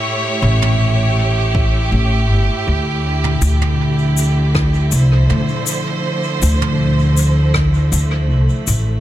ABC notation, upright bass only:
X:1
M:4/4
L:1/8
Q:1/4=80
K:Dm
V:1 name="Upright bass" clef=bass
z A,,,4 A,,, G,,, D,,- | D,, D,,4 C,, D,, z | z D,,4 D,, C,, A,,, |]